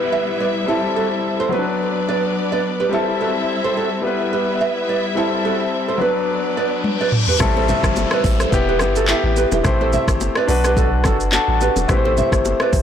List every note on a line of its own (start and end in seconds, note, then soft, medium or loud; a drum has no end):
0.00 0.64 G3 medium
0.00 1.50 G3 medium
0.00 0.65 B3 medium
0.00 0.66 B3 medium
0.00 0.66 E4 medium
0.00 1.49 E4 medium
0.00 0.66 B4 medium
0.00 0.70 B4 medium
0.00 1.50 E5 medium
0.00 downlifter medium
0.12 0.23 B4 medium
0.12 0.22 E5 medium
0.40 0.51 B4 medium
0.40 0.50 D5 medium
0.66 1.51 G3 medium
0.66 1.51 C4 medium
0.66 1.52 E4 medium
0.66 0.79 E4 medium
0.66 0.78 G4 medium
0.66 1.51 A4 medium
0.66 1.52 A4 medium
0.96 1.07 F#4 medium
0.96 1.06 A4 medium
1.40 1.49 A4 medium
1.40 1.48 C5 medium
1.49 2.88 F#3 medium
1.49 2.90 F#3 medium
1.49 2.88 B3 medium
1.49 2.90 B3 medium
1.49 1.59 C4 soft
1.49 2.90 D4 medium
1.49 2.90 B4 medium
1.49 1.63 B4 medium
1.49 2.90 D5 medium
1.53 1.63 F#4 medium
1.53 2.90 B4 medium
1.59 2.93 D4 medium
2.09 2.19 B4 medium
2.09 2.19 D5 medium
2.52 2.61 B4 medium
2.52 2.60 D5 medium
2.80 2.89 G4 medium
2.80 2.88 B4 medium
2.89 4.00 G3 medium
2.89 4.03 G3 medium
2.89 4.01 C4 medium
2.89 4.03 C4 medium
2.89 4.03 E4 medium
2.89 4.02 E4 medium
2.89 3.03 G4 medium
2.89 4.03 A4 medium
2.89 4.03 E5 medium
2.93 3.03 E4 medium
2.93 4.03 A4 medium
3.21 3.31 F#4 medium
3.21 3.31 A4 medium
3.64 3.73 A4 medium
3.64 3.72 C5 medium
3.77 3.87 F#4 medium
3.77 3.87 A4 medium
4.02 5.13 G3 medium
4.02 5.98 G3 medium
4.02 5.13 B3 medium
4.02 5.15 B3 medium
4.02 5.98 E4 medium
4.02 5.14 E4 medium
4.02 5.15 B4 medium
4.02 5.98 E5 medium
4.07 5.15 B4 medium
4.33 4.44 G4 medium
4.33 4.43 B4 medium
4.61 4.71 B4 medium
4.61 4.71 E5 medium
4.89 5.00 B4 medium
4.89 4.99 D5 medium
5.15 6.00 G3 medium
5.15 6.00 C4 medium
5.15 5.99 C4 medium
5.15 6.00 E4 medium
5.15 5.28 E4 medium
5.15 5.27 G4 medium
5.15 5.99 A4 medium
5.15 6.01 A4 medium
5.45 5.56 F#4 medium
5.45 5.55 A4 medium
5.88 5.97 A4 medium
5.88 5.97 C5 medium
5.98 7.36 F#3 medium
5.98 7.39 F#3 medium
5.98 7.37 B3 medium
5.98 7.39 B3 medium
5.98 7.39 D4 medium
5.98 7.38 D4 medium
5.98 7.39 B4 medium
5.98 6.11 B4 medium
5.98 7.39 D5 medium
6.02 6.12 F#4 medium
6.02 7.39 B4 medium
6.28 reverse cymbal medium
6.57 6.68 B4 medium
6.57 6.67 D5 medium
6.84 high tom medium
7.01 7.09 B4 medium
7.01 7.09 D5 medium
7.12 mid tom medium
7.28 7.37 G4 medium
7.28 7.37 B4 medium
7.28 floor tom medium
7.39 7.74 A1 loud
7.39 8.18 G3 medium
7.39 8.18 A3 medium
7.39 8.19 C4 medium
7.39 8.19 E4 medium
7.39 8.19 A4 loud
7.39 kick loud
7.39 cross-stick loud
7.39 downlifter medium
7.39 low conga medium
7.39 shaker medium
7.57 7.65 A4 medium
7.57 7.65 C5 medium
7.57 high bongo medium
7.68 7.80 C5 medium
7.68 7.79 E5 medium
7.68 low bongo medium
7.68 low conga medium
7.68 shaker medium
7.83 8.05 G1 medium
7.83 kick loud
7.83 cross-stick loud
7.83 shaker medium
7.96 high bongo medium
7.96 shaker medium
8.11 8.21 B4 medium
8.11 8.21 D5 medium
8.11 cross-stick loud
8.24 8.46 A1 loud
8.24 kick medium
8.24 open hi-hat medium
8.24 shaker medium
8.40 8.49 A4 medium
8.40 8.49 C5 medium
8.40 cross-stick medium
8.40 shaker medium
8.51 8.82 E1 loud
8.51 8.98 B3 medium
8.51 8.98 E4 medium
8.51 8.99 G4 loud
8.51 kick medium
8.51 low conga medium
8.51 shaker medium
8.69 8.77 G4 medium
8.69 8.77 B4 medium
8.79 9.14 G1 loud
8.79 cross-stick loud
8.79 low bongo medium
8.79 shaker medium
8.96 9.06 F#4 medium
8.96 9.05 A4 medium
8.96 shaker medium
9.07 9.48 B3 medium
9.07 9.48 E4 medium
9.07 9.20 E4 medium
9.07 9.49 G4 loud
9.07 9.20 A4 medium
9.07 clap loud
9.07 high bongo medium
9.07 shaker medium
9.24 9.46 A1 medium
9.36 9.48 G4 medium
9.36 9.48 B4 medium
9.36 high bongo soft
9.36 shaker medium
9.52 9.62 E1 medium
9.52 9.62 E4 medium
9.52 9.61 G4 medium
9.52 low bongo medium
9.52 shaker medium
9.63 9.98 A1 loud
9.63 10.42 A3 medium
9.63 10.43 C4 medium
9.63 10.43 E4 medium
9.63 10.43 G4 medium
9.63 10.43 C5 loud
9.63 kick loud
9.63 cross-stick loud
9.63 low conga medium
9.63 shaker medium
9.81 9.90 A4 medium
9.81 9.89 C5 medium
9.81 high bongo medium
9.93 10.04 C5 medium
9.93 10.04 E5 medium
9.93 low bongo medium
9.93 low conga medium
9.93 shaker medium
10.08 10.30 G1 medium
10.08 kick loud
10.08 cross-stick medium
10.08 shaker medium
10.21 high bongo medium
10.21 shaker medium
10.35 10.46 B4 medium
10.35 10.45 D5 medium
10.35 cross-stick loud
10.47 11.06 B1 loud
10.47 11.17 D4 medium
10.47 11.17 F#4 medium
10.47 11.18 B4 loud
10.47 open hi-hat medium
10.47 shaker medium
10.64 10.74 G4 medium
10.64 10.73 B4 medium
10.64 cross-stick medium
10.64 shaker medium
10.77 10.88 F#4 medium
10.77 10.88 A4 medium
10.77 kick medium
10.77 low conga medium
10.77 shaker medium
11.04 11.39 F#1 loud
11.04 11.16 F#4 medium
11.04 11.16 A4 medium
11.04 kick medium
11.04 cross-stick medium
11.04 low bongo medium
11.04 shaker medium
11.20 shaker medium
11.32 11.72 D4 medium
11.32 11.73 F#4 medium
11.32 11.74 A4 loud
11.32 clap medium
11.32 high bongo medium
11.32 shaker medium
11.48 11.70 A1 loud
11.61 11.72 G4 medium
11.61 11.72 B4 medium
11.61 high bongo soft
11.61 shaker medium
11.76 11.86 E1 medium
11.76 low bongo medium
11.76 shaker medium
11.88 12.23 A1 loud
11.88 12.67 A3 medium
11.88 12.67 C4 medium
11.88 12.67 E4 medium
11.88 12.68 G4 medium
11.88 11.97 B4 medium
11.88 kick loud
11.88 cross-stick loud
11.88 low conga medium
11.88 shaker medium
11.97 12.71 C5 loud
12.05 12.14 A4 medium
12.05 12.13 C5 medium
12.05 high bongo medium
12.17 12.28 C5 medium
12.17 12.28 E5 medium
12.17 low bongo medium
12.17 low conga medium
12.17 shaker medium
12.32 12.54 G1 medium
12.32 kick loud
12.32 cross-stick medium
12.32 shaker medium
12.45 high bongo medium
12.45 shaker medium
12.60 12.70 B4 medium
12.60 12.70 D5 medium
12.60 cross-stick loud
12.73 12.82 A1 loud
12.73 kick loud
12.73 open hi-hat medium
12.73 shaker medium